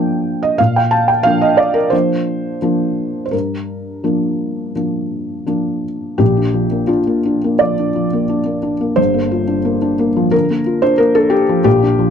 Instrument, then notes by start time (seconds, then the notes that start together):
felt piano
Already playing: F3 A#3 D4 A#4 G5
0.43 D#5
0.58 A#2 F5
0.76 G5
0.91 A5
1.08 G5
1.23 F3 A#3 D4 F5
1.41 D#5
1.57 D5
1.74 A#4
1.90 F3 A#3 D4 C5
2.62 F3 A#3 D4
3.25 C5
3.31 G2 A#4
4.04 F3 A#3 D4
4.76 F3 A#3 D4
5.46 F3 A#3 D4
6.18 A#1 A#2 G4
6.37 D4
6.54 F3
6.71 A#3
6.87 D4 F4
7.07 A#3
7.25 D4
7.44 A#3
7.59 F3 D5
7.79 D4
7.96 F3
8.13 A#3
8.29 D4
8.46 A#3
8.63 D4
8.81 A#3
8.96 G1 G2 C5
9.14 A#3
9.31 F4
9.47 D4
9.65 A#3
9.82 D4
9.99 A#3
10.16 F3
10.31 D3 A#4
10.50 A#3
10.66 F4
10.82 D4 C5
10.98 A#3 A#4
11.15 D4 A4
11.30 A#3 G4
11.49 F3
11.64 A#1 A#2 G4
11.83 D4
11.99 F3